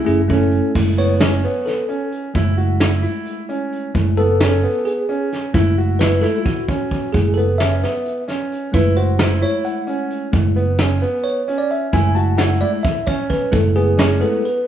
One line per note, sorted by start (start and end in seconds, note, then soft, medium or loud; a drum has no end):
0.00 0.21 E4 medium
0.05 0.58 F#1 medium
0.05 0.20 A3 medium
0.05 0.21 C#4 medium
0.05 0.21 E4 medium
0.05 0.21 G#4 medium
0.05 closed hi-hat medium
0.28 0.75 A3 medium
0.28 0.75 C#4 medium
0.28 0.67 C#4 medium
0.28 0.75 E4 medium
0.28 0.75 A4 medium
0.28 kick medium
0.28 closed hi-hat medium
0.51 closed hi-hat medium
0.75 1.44 F#1 medium
0.75 1.40 G#3 medium
0.75 1.41 A3 soft
0.75 1.41 E4 medium
0.75 kick loud
0.75 crash medium
0.98 1.17 B3 medium
0.98 1.69 C#5 loud
0.98 closed hi-hat medium
1.20 1.40 C#4 medium
1.20 snare loud
1.20 closed hi-hat medium
1.44 1.82 B3 medium
1.44 closed hi-hat medium
1.66 2.09 A4 medium
1.66 snare soft
1.66 closed hi-hat medium
1.89 2.27 C#4 medium
1.89 closed hi-hat medium
2.12 closed hi-hat medium
2.34 3.04 F#1 medium
2.34 3.90 G#3 soft
2.34 3.91 A3 soft
2.34 2.54 E4 medium
2.34 3.91 E4 medium
2.34 kick loud
2.34 closed hi-hat medium
2.57 2.77 F#4 medium
2.57 closed hi-hat medium
2.80 2.99 E4 medium
2.80 snare loud
2.80 closed hi-hat medium
3.03 3.41 E4 medium
3.03 closed hi-hat soft
3.26 closed hi-hat medium
3.49 3.87 C#4 medium
3.49 closed hi-hat medium
3.72 closed hi-hat medium
3.94 4.64 F#1 medium
3.94 4.25 G#3 medium
3.94 4.25 A3 soft
3.94 4.26 E4 medium
3.94 kick medium
3.94 closed hi-hat medium
4.17 4.37 B3 medium
4.17 4.88 A4 loud
4.17 closed hi-hat medium
4.40 4.59 C#4 medium
4.40 snare loud
4.40 closed hi-hat medium
4.63 5.01 B3 medium
4.63 closed hi-hat medium
4.85 5.28 G#4 medium
4.85 closed hi-hat medium
5.09 5.47 C#4 medium
5.09 closed hi-hat medium
5.33 snare soft
5.33 closed hi-hat medium
5.53 6.23 F#1 medium
5.53 6.21 G#3 soft
5.53 6.21 A3 soft
5.53 5.73 E4 medium
5.53 6.21 E4 medium
5.53 kick loud
5.53 closed hi-hat medium
5.77 5.97 F#4 medium
5.77 closed hi-hat medium
5.99 6.19 E4 medium
5.99 6.23 B4 medium
5.99 snare loud
5.99 closed hi-hat medium
6.21 6.43 G#3 soft
6.21 6.43 A3 soft
6.21 6.43 E4 medium
6.21 6.61 E4 medium
6.21 6.39 A4 medium
6.21 snare soft
6.21 closed hi-hat medium
6.38 6.46 F4 medium
6.45 7.16 F#4 medium
6.45 kick medium
6.45 closed hi-hat medium
6.68 7.06 C#4 medium
6.68 kick medium
6.68 closed hi-hat medium
6.91 kick medium
6.91 closed hi-hat medium
7.12 7.83 F#1 medium
7.12 7.44 G#3 soft
7.12 7.45 A3 soft
7.12 7.45 E4 medium
7.12 7.37 G#4 medium
7.12 kick loud
7.12 closed hi-hat medium
7.34 7.56 B3 medium
7.34 7.59 A4 medium
7.34 closed hi-hat medium
7.58 7.79 C#4 medium
7.58 8.24 E5 medium
7.58 snare medium
7.58 closed hi-hat medium
7.83 8.21 B3 medium
7.83 snare soft
7.83 closed hi-hat medium
8.05 closed hi-hat medium
8.28 8.66 C#4 medium
8.28 snare soft
8.28 closed hi-hat medium
8.52 closed hi-hat medium
8.72 9.43 F#1 medium
8.72 10.29 G#3 medium
8.72 10.29 A3 soft
8.72 10.29 E4 medium
8.72 8.93 E4 medium
8.72 8.95 B4 medium
8.72 kick loud
8.72 closed hi-hat medium
8.96 9.16 F#4 medium
8.96 9.44 C5 medium
8.96 closed hi-hat medium
9.19 9.38 E4 medium
9.19 snare loud
9.19 closed hi-hat medium
9.41 9.80 E4 medium
9.41 9.66 C#5 medium
9.41 closed hi-hat medium
9.64 10.07 F#5 medium
9.64 closed hi-hat medium
9.87 10.25 C#4 medium
9.87 closed hi-hat medium
10.10 closed hi-hat medium
10.32 11.02 F#1 medium
10.32 10.63 G#3 medium
10.32 10.64 A3 medium
10.32 10.64 E4 medium
10.32 kick loud
10.32 closed hi-hat medium
10.56 10.75 B3 medium
10.56 closed hi-hat medium
10.78 10.98 C#4 medium
10.78 snare loud
10.78 closed hi-hat medium
11.02 11.40 B3 medium
11.02 closed hi-hat medium
11.24 11.59 C#5 medium
11.24 closed hi-hat medium
11.48 11.86 C#4 medium
11.48 closed hi-hat medium
11.58 11.70 D5 medium
11.71 11.94 E5 medium
11.71 closed hi-hat medium
11.93 12.62 F#1 loud
11.93 12.59 G#3 medium
11.93 12.59 A3 soft
11.93 12.12 E4 medium
11.93 12.59 E4 medium
11.93 12.15 G#5 loud
11.93 kick loud
11.93 closed hi-hat medium
12.15 12.35 F#4 medium
12.15 12.39 A5 loud
12.15 closed hi-hat medium
12.38 12.58 E4 medium
12.38 12.62 F#5 medium
12.38 snare loud
12.38 closed hi-hat medium
12.60 12.81 G#3 soft
12.60 12.82 A3 soft
12.60 12.82 E4 soft
12.60 12.99 E4 medium
12.60 12.71 D5 medium
12.60 closed hi-hat medium
12.83 13.07 E5 medium
12.83 kick loud
12.83 closed hi-hat medium
13.07 13.45 C#4 medium
13.07 13.30 C#5 medium
13.07 kick medium
13.07 closed hi-hat medium
13.30 13.51 B4 medium
13.30 kick medium
13.30 closed hi-hat medium
13.51 14.21 F#1 medium
13.51 14.17 G#3 medium
13.51 14.17 A3 soft
13.51 14.17 E4 medium
13.51 13.74 A4 medium
13.51 kick loud
13.51 closed hi-hat medium
13.76 13.95 B3 medium
13.76 14.23 G#4 medium
13.76 closed hi-hat medium
13.98 14.17 C#4 medium
13.98 snare medium
13.98 closed hi-hat medium
14.19 14.41 G#3 soft
14.19 14.41 A3 soft
14.19 14.58 B3 medium
14.19 14.41 E4 medium
14.19 14.45 A4 medium
14.19 closed hi-hat medium
14.45 14.67 B4 medium
14.45 closed hi-hat medium